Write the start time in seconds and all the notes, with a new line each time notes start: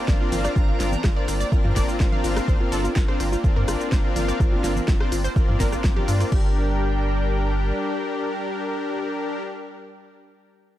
Already playing: A#3 C4 D4 A#5
0.08 G1 C4 D4 F4 A#4 D5 F5, kick, snare, shaker
0.20 C4 D4 F4 A#4 D5
0.32 G1 C4 D4 F4 A#4 F5, open hi-hat, low conga, shaker
0.45 D5, cross-stick, shaker
0.56 G1 F4, kick, shaker
0.68 F4
0.80 G1 C4 D4 F4 A#4 D5, snare, open hi-hat, shaker
0.93 high conga, low conga, shaker
1.04 G1 F4, kick, cross-stick, snare, shaker
1.16 C4 D4 F4 A#4 D5
1.28 G1 F4, cross-stick, open hi-hat, shaker
1.40 D5, shaker
1.52 G1 C4 D4 F4 A#4 D5, kick, shaker
1.64 G2 F4, low conga
1.76 G1 D5, kick, cross-stick, snare, open hi-hat, shaker
1.88 F4, shaker
2.00 G1 C4 D4 F4 A#4 F5, kick, snare, shaker
2.12 C4 D4 F4 A#4 D5 F5, low conga
2.24 G1 C4 D4 F4 A#4 F5, open hi-hat, shaker
2.36 F4, cross-stick, open hi-hat, shaker
2.48 G1 C5, kick, shaker
2.60 F4
2.72 G1 C4 D4 F4 A4 A#4 D5, open hi-hat, shaker
2.84 F4, high conga, shaker
2.96 G1 F4, kick, snare, shaker
3.08 C4 D4 F4 A#4 C5 D5, cross-stick
3.20 G1 F4, cross-stick, open hi-hat, shaker
3.32 F4, shaker
3.44 G1 C4 D4 F4 A#4 D5, kick, shaker
3.56 G2 A#4
3.68 G1 F4, cross-stick, open hi-hat, shaker
3.80 F4, shaker
3.92 G1 C4 D4 F4 A#4 C5 F5, kick, snare, shaker
4.04 C4 D4 F4 A#4 D5
4.16 G1 C4 D4 F4 A#4 F5, open hi-hat, low conga, shaker
4.28 D5, cross-stick, shaker
4.40 G1 F4, kick, cross-stick, shaker
4.52 F4
4.64 G1 C4 D4 F4 A#4 D5, snare, open hi-hat, shaker
4.76 high conga, low conga, shaker
4.88 G1 F4, kick, snare, shaker
5.00 C4 D4 F4 A#4 C5 D5, cross-stick
5.12 G1 F4, open hi-hat, shaker
5.24 C5, shaker
5.36 G1 C4 D4 F4 A#4 D5, kick, shaker
5.48 G2 F4, low conga
5.60 G1 A#4, kick, snare, open hi-hat, high conga, shaker
5.72 F4, cross-stick, shaker
5.84 G1 F4, kick, snare, shaker
5.96 C4 D4 F4 G4 A#4 D5, low conga
6.08 G2 F4, open hi-hat, shaker
6.20 F4, cross-stick, open hi-hat, shaker
6.32 G1 G3 D4 G4 A#4 G5, kick, crash